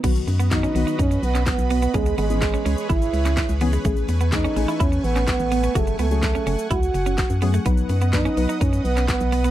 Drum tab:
CC |x---------------|----------------|----------------|----------------|
HH |x-o-x-o-x-o-x-o-|x-o-x-o-x-o-x-o-|x-o-x-o-x-o-x-o-|x-o-x-o-x-o-x-o-|
SH |xxxxxxxxxxxxxxxx|xxxxxxxxxxxxxxxx|xxxxxxxxxxxxxxxx|xxxxxxxxxxxxxxxx|
CP |----x------xx---|----x------xx---|----x------xx---|----x-------x---|
SD |----o-------o---|----o-------o---|----o-------o---|----o-------o---|
BD |o---o---o---o---|o---o---o---o---|o---o---o---o---|o---o---o---o---|

CC |----------------|
HH |x-o-x-o-x-o-x-o-|
SH |xxxxxxxxxxxxxxxx|
CP |----x------xx---|
SD |----o-------o---|
BD |o---o---o---o---|